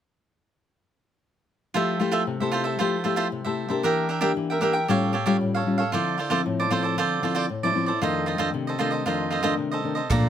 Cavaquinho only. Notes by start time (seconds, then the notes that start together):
1.74 F4 A4 C5 E5
2.00 F4 A4 C5 E5
2.11 F4 A4 C5 E5
2.40 A4 C5 E5
2.52 F4 A4 C5 E5
2.64 A4 C5 E5
2.79 F4 A4 C5 E5
3.04 F4 A4 C5 E5
3.16 F4 A4 C5 E5
3.45 A4 C5 E5
3.69 A4 C5 E5
3.83 D4 A#4 E5 G5
4.09 D4 A#4 E5 G5
4.21 D4 A#4 E5 G5
4.50 A#4 E5 G5
4.61 D4 A#4 E5 G5
4.73 A#4 E5 G5
4.88 G4 A4 C#5 F5
5.13 G4 A4 C#5 F5
5.26 G4 A4 C#5 F5
5.55 A4 C#5 F5
5.78 A4 C#5 F5
5.92 F4 A4 C5 D5
6.18 F4 A4 C5 D5
6.30 F4 A4 C5 D5
6.60 A4 C5 D5
6.71 F4 A4 C5 D5
6.83 A4 C5 D5
6.98 F4 A4 C5 D5
7.23 F4 A4 C5 D5
7.35 F4 A4 C5 D5
7.63 A4 C5 D5
7.86 A4 C5 D5
8.02 F4 A4 C5 D#5
8.26 F4 A4 C5 D#5
8.38 F4 A4 C5 D#5
8.67 A4 C5 D#5
8.79 F4 A4 C5 D#5
8.91 A4 C5 D#5
9.06 F4 A4 C5 D#5
9.30 F4 A4 C5 D#5
9.43 F4 A4 C5 D#5
9.71 A4 C5 D#5
9.95 A4 C5 D#5
10.10 A4 D5 F5 A#5